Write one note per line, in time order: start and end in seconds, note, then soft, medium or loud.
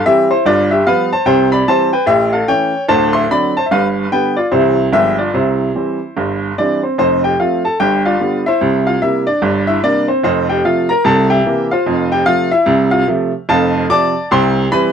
0.05 0.28 E3 medium
0.05 0.28 G3 medium
0.05 0.28 C4 medium
0.05 0.29 G4 medium
0.05 0.27 E5 loud
0.30 0.45 E4 medium
0.30 0.43 C5 medium
0.46 0.80 G1 medium
0.46 0.80 G2 medium
0.46 0.70 F4 medium
0.46 0.67 D5 loud
0.71 0.86 G4 medium
0.71 0.84 E5 medium
0.86 1.09 F3 soft
0.86 1.09 G3 soft
0.86 1.09 B3 medium
0.86 1.11 B4 medium
0.86 1.08 F5 loud
1.12 1.25 C5 medium
1.12 1.25 A5 loud
1.25 1.61 C2 medium
1.25 1.61 C3 loud
1.25 1.50 C5 medium
1.25 1.48 G5 loud
1.52 1.67 D5 medium
1.52 1.65 B5 loud
1.68 1.90 E3 medium
1.68 1.90 G3 medium
1.68 1.91 C4 medium
1.68 1.92 C5 medium
1.68 1.89 A5 loud
1.93 2.07 B4 medium
1.93 2.06 G5 medium
2.06 2.42 A1 medium
2.06 2.42 A2 medium
2.06 2.32 G4 medium
2.06 2.29 E5 loud
2.33 2.48 A4 medium
2.33 2.46 F5 medium
2.48 2.71 E3 soft
2.48 2.71 A3 soft
2.48 2.71 C#4 medium
2.48 2.87 C#5 medium
2.48 2.83 G5 loud
2.88 3.24 D1 medium
2.88 3.24 D2 medium
2.88 3.13 C5 medium
2.88 3.11 A5 loud
3.13 3.29 E5 medium
3.13 3.27 C6 medium
3.31 3.53 D3 medium
3.31 3.53 F#3 medium
3.31 3.53 C4 medium
3.31 3.55 D5 medium
3.31 3.52 B5 loud
3.57 3.66 C5 medium
3.57 3.65 A5 loud
3.66 3.71 E5 medium
3.71 4.06 G1 medium
3.71 4.06 G2 medium
3.71 4.10 B4 medium
3.71 4.06 F5 loud
4.12 4.34 D3 soft
4.12 4.35 G3 medium
4.12 4.35 B3 medium
4.12 4.36 B4 medium
4.12 4.34 G5 loud
4.37 4.52 F4 medium
4.37 4.50 D5 medium
4.51 4.87 C2 medium
4.51 4.87 C3 medium
4.51 4.74 E3 medium
4.51 4.74 G3 medium
4.51 4.75 C4 soft
4.51 4.91 E4 medium
4.51 4.87 C5 loud
4.92 5.27 G1 medium
4.92 5.28 G2 medium
4.92 5.15 F3 soft
4.92 5.16 G#3 soft
4.92 5.16 B3 soft
4.92 5.17 G4 medium
4.92 5.15 E5 loud
5.19 5.34 F4 soft
5.19 5.32 D5 medium
5.34 5.69 C2 medium
5.34 5.68 C3 medium
5.34 6.53 E4 medium
5.34 6.38 C5 medium
5.75 5.97 E3 soft
5.75 5.98 G3 soft
5.75 5.98 C4 soft
6.17 6.51 G1 medium
6.17 6.51 G2 medium
6.58 6.80 E3 soft
6.58 6.80 G3 soft
6.58 6.80 C4 medium
6.58 6.81 D4 medium
6.58 6.79 D5 medium
6.83 6.98 C4 soft
6.83 6.96 C5 soft
6.98 7.33 F1 medium
6.98 7.32 F2 medium
6.98 7.22 C4 medium
6.98 7.20 C5 loud
7.24 7.38 G4 medium
7.24 7.37 G5 medium
7.39 7.61 F3 soft
7.39 7.62 A3 soft
7.39 7.62 C4 soft
7.39 7.63 F4 medium
7.39 7.60 F5 medium
7.65 7.79 A4 medium
7.65 7.77 A5 medium
7.80 8.14 G1 medium
7.80 8.14 G2 medium
7.80 8.03 G4 medium
7.80 8.01 G5 loud
8.05 8.43 F4 medium
8.05 8.43 D5 medium
8.05 8.39 F5 medium
8.20 8.42 D3 soft
8.20 8.43 G3 medium
8.20 8.43 B3 medium
8.46 8.84 E4 medium
8.46 8.84 C5 medium
8.46 8.80 E5 medium
8.61 8.95 C2 medium
8.61 8.95 C3 medium
8.87 9.01 F4 medium
8.87 8.99 F5 medium
9.02 9.24 C3 soft
9.02 9.24 G3 soft
9.02 9.25 A#3 soft
9.02 9.25 E4 medium
9.02 9.23 E5 medium
9.27 9.65 D4 medium
9.27 9.61 D5 medium
9.42 9.76 G1 medium
9.42 9.77 G2 medium
9.67 9.82 E4 medium
9.67 9.80 E5 medium
9.83 10.05 C3 soft
9.83 10.06 G3 medium
9.83 10.06 A#3 medium
9.83 10.07 D4 medium
9.83 10.05 D5 loud
10.08 10.23 C4 medium
10.08 10.21 C5 medium
10.24 10.58 F1 medium
10.24 10.58 F2 loud
10.24 10.48 C4 medium
10.24 10.45 C5 loud
10.49 10.64 G4 medium
10.49 10.62 G5 medium
10.64 10.86 C3 soft
10.64 10.87 F3 medium
10.64 10.87 A3 medium
10.64 10.88 F4 medium
10.64 10.86 F5 medium
10.89 11.04 A#4 medium
10.89 11.02 A#5 medium
11.04 11.39 C2 loud
11.04 11.39 C3 medium
11.04 11.29 A4 medium
11.04 11.26 A5 loud
11.30 11.68 G4 medium
11.30 11.68 E5 medium
11.30 11.64 G5 medium
11.45 11.67 C3 medium
11.45 11.68 E3 medium
11.45 11.68 A#3 medium
11.71 12.10 F4 medium
11.71 12.09 C5 medium
11.71 12.05 F5 medium
11.86 12.21 F1 medium
11.86 12.21 F2 medium
12.12 12.26 G4 medium
12.12 12.25 G5 medium
12.26 12.48 C3 soft
12.26 12.49 F3 medium
12.26 12.49 A3 medium
12.26 12.50 F4 medium
12.26 12.48 F5 loud
12.51 12.90 E4 medium
12.51 12.86 E5 loud
12.66 13.01 C2 medium
12.66 13.01 C3 loud
12.91 13.07 F4 medium
12.91 13.05 F5 loud
13.08 13.30 C3 medium
13.08 13.31 F3 medium
13.08 13.31 A3 medium
13.49 13.84 F1 medium
13.49 13.83 F2 loud
13.49 13.88 A4 medium
13.49 13.88 F5 medium
13.49 13.84 A5 loud
13.89 14.12 C3 medium
13.89 14.12 F3 medium
13.89 14.12 C4 medium
13.89 14.28 D5 loud
13.89 14.28 A5 medium
13.89 14.24 D6 loud
14.31 14.65 C2 loud
14.31 14.65 C3 loud
14.31 14.69 C5 medium
14.31 14.69 G5 medium
14.31 14.66 C6 loud
14.71 14.92 E3 medium
14.71 14.92 G3 medium
14.71 14.92 C4 medium
14.71 14.92 B4 medium
14.71 14.92 B5 loud